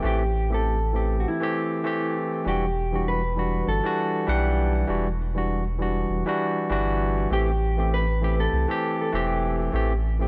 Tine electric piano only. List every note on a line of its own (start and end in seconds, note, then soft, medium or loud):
0.02 0.21 E3 medium
0.02 0.22 A3 medium
0.02 0.22 C4 medium
0.02 0.23 G4 medium
0.49 0.77 E3 medium
0.49 0.77 A3 medium
0.49 0.78 C4 medium
0.49 0.78 G4 medium
0.93 1.37 E3 medium
0.93 1.37 A3 medium
0.93 1.38 C4 medium
0.93 1.38 G4 medium
1.40 1.82 E3 medium
1.40 1.82 A3 medium
1.40 1.83 C4 medium
1.40 1.83 G4 loud
1.84 2.42 E3 medium
1.84 2.42 A3 medium
1.84 2.43 C4 medium
1.84 2.43 G4 loud
2.45 2.64 E3 medium
2.45 2.64 G3 medium
2.45 2.65 D4 medium
2.45 2.65 F#4 medium
2.92 3.19 E3 medium
2.92 3.20 G3 medium
2.92 3.20 D4 medium
2.92 3.21 F#4 medium
3.35 3.79 E3 medium
3.35 3.80 G3 medium
3.35 3.80 D4 medium
3.35 3.81 F#4 medium
3.83 4.24 E3 medium
3.83 4.25 G3 medium
3.83 4.25 D4 medium
3.83 4.26 F#4 loud
4.26 4.84 E3 medium
4.26 4.85 G3 medium
4.26 4.86 D4 medium
4.26 4.86 F#5 medium
4.87 5.06 E3 medium
4.87 5.07 G3 medium
4.87 5.07 D4 medium
4.87 5.08 F#4 medium
5.34 5.62 E3 medium
5.34 5.62 G3 medium
5.34 5.63 D4 medium
5.34 5.63 F#4 medium
5.78 6.22 E3 medium
5.78 6.23 G3 medium
5.78 6.23 D4 medium
5.78 6.24 F#4 medium
6.26 6.67 E3 medium
6.26 6.67 G3 medium
6.26 6.68 D4 medium
6.26 6.68 F#4 loud
6.69 7.27 E3 medium
6.69 7.28 G3 medium
6.69 7.28 D4 medium
6.69 7.29 F#4 loud
7.30 7.49 E3 medium
7.30 7.49 A3 medium
7.30 7.50 C4 medium
7.30 7.50 G4 medium
7.77 8.04 E3 medium
7.77 8.05 A3 medium
7.77 8.05 C4 medium
7.77 8.06 G4 medium
8.21 8.65 E3 medium
8.21 8.65 A3 medium
8.21 8.65 C4 medium
8.21 8.66 G4 medium
8.68 9.09 E3 medium
8.68 9.09 A3 medium
8.68 9.10 C4 medium
8.68 9.11 G4 loud
9.12 9.70 E3 medium
9.12 9.70 A3 medium
9.12 9.71 C4 medium
9.12 9.71 G4 loud
9.72 9.91 E3 medium
9.72 9.92 A3 medium
9.72 9.92 C4 medium
9.72 9.93 G4 medium
10.19 10.28 E3 medium
10.19 10.28 A3 medium
10.19 10.28 C4 medium
10.19 10.28 G4 medium